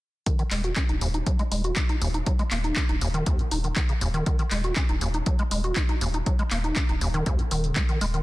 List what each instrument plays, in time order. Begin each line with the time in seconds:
0.26 acid bass D#3, kick, closed hi-hat
0.39 acid bass D#3, closed hi-hat
0.51 sub bass D#1, acid bass G#3, clap, open hi-hat
0.64 acid bass F#4, closed hi-hat
0.76 acid bass C#4, kick, clap, closed hi-hat
0.89 sub bass D#1, acid bass D#4, closed hi-hat
1.01 sub bass D#1, acid bass D#2, open hi-hat
1.14 acid bass D#4, closed hi-hat
1.26 acid bass F#3, kick, closed hi-hat
1.39 acid bass G#3, closed hi-hat
1.52 sub bass D#1, acid bass G#3, open hi-hat
1.64 acid bass F#4, closed hi-hat
1.76 acid bass C#4, kick, clap, closed hi-hat
1.89 acid bass D#4, closed hi-hat
2.01 sub bass D#1, acid bass D#2, open hi-hat
2.14 acid bass D#4, closed hi-hat
2.26 acid bass F#3, kick, closed hi-hat
2.39 acid bass G#3, closed hi-hat
2.51 sub bass D#1, acid bass A#3, clap, open hi-hat
2.64 acid bass D#4, closed hi-hat
2.76 acid bass C#4, kick, clap, closed hi-hat
2.89 sub bass D#1, acid bass D#4, closed hi-hat
3.01 sub bass D#1, acid bass D#2, open hi-hat
3.14 acid bass D#3, closed hi-hat
3.26 acid bass D#2, kick, closed hi-hat
3.39 acid bass D#3, closed hi-hat
3.51 sub bass D#1, acid bass D#4, open hi-hat
3.64 acid bass D#3, closed hi-hat
3.76 acid bass D#3, kick, clap, closed hi-hat
3.89 acid bass C#3, closed hi-hat
4.01 sub bass D#1, acid bass D#2, open hi-hat
4.14 acid bass D#3, closed hi-hat
4.26 acid bass D#3, kick, closed hi-hat
4.39 acid bass D#3, closed hi-hat
4.51 sub bass D#1, acid bass G#3, clap, open hi-hat
4.64 acid bass F#4, closed hi-hat
4.76 acid bass C#4, kick, clap, closed hi-hat
4.89 sub bass D#1, acid bass D#4, closed hi-hat
5.01 sub bass D#1, acid bass D#2, open hi-hat
5.14 acid bass D#4, closed hi-hat
5.26 acid bass F#3, kick, closed hi-hat
5.39 acid bass G#3, closed hi-hat
5.51 sub bass D#1, acid bass G#3, open hi-hat
5.64 acid bass F#4, closed hi-hat
5.76 acid bass C#4, kick, clap, closed hi-hat
5.89 acid bass D#4, closed hi-hat
6.01 sub bass D#1, acid bass D#2, open hi-hat
6.14 acid bass D#4, closed hi-hat
6.26 acid bass F#3, kick, closed hi-hat
6.39 acid bass G#3, closed hi-hat
6.51 sub bass D#1, acid bass A#3, clap, open hi-hat
6.64 acid bass D#4, closed hi-hat
6.76 acid bass C#4, kick, clap, closed hi-hat
6.89 sub bass D#1, acid bass D#4, closed hi-hat
7.01 sub bass D#1, acid bass D#2, open hi-hat
7.14 acid bass D#3, closed hi-hat
7.26 acid bass D#2, kick, closed hi-hat
7.39 acid bass D#3, closed hi-hat
7.51 sub bass D#1, acid bass D#3, open hi-hat
7.64 acid bass C#3, closed hi-hat
7.76 acid bass A#3, kick, clap, closed hi-hat
7.89 acid bass D#3, closed hi-hat
8.01 sub bass D#1, acid bass G#3, open hi-hat
8.14 acid bass D#3, closed hi-hat